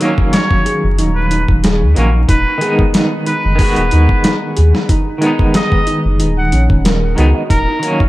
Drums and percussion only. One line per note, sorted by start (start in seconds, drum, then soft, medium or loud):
0.01 closed hi-hat medium
0.18 kick loud
0.33 snare loud
0.33 closed hi-hat medium
0.51 kick loud
0.66 closed hi-hat medium
0.98 closed hi-hat medium
1.31 closed hi-hat medium
1.48 kick loud
1.64 snare loud
1.64 closed hi-hat medium
1.96 closed hi-hat medium
2.29 kick loud
2.29 closed hi-hat medium
2.61 closed hi-hat medium
2.79 kick medium
2.94 snare loud
2.94 closed hi-hat medium
3.26 closed hi-hat medium
3.59 kick loud
3.59 open hi-hat medium
3.76 closed hi-hat soft
3.91 closed hi-hat medium
4.09 kick loud
4.24 snare loud
4.24 closed hi-hat medium
4.57 closed hi-hat medium
4.75 snare medium
4.89 kick loud
4.89 closed hi-hat medium
5.22 closed hi-hat medium
5.39 kick loud
5.54 snare loud
5.54 closed hi-hat medium
5.72 kick medium
5.87 closed hi-hat medium
6.20 closed hi-hat medium
6.52 closed hi-hat medium
6.70 kick medium
6.85 snare loud
6.85 closed hi-hat medium
7.18 closed hi-hat medium
7.50 kick loud
7.50 closed hi-hat medium
7.83 closed hi-hat medium
8.00 kick loud